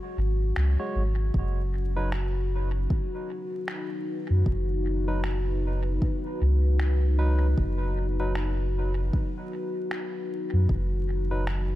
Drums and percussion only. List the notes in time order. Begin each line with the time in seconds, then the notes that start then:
0.56 finger snap
1.34 kick
2.12 finger snap
2.90 kick
3.68 finger snap
4.46 kick
5.24 finger snap
6.02 kick
6.80 finger snap
7.58 kick
8.35 finger snap
9.13 kick
9.91 finger snap
10.69 kick
11.47 finger snap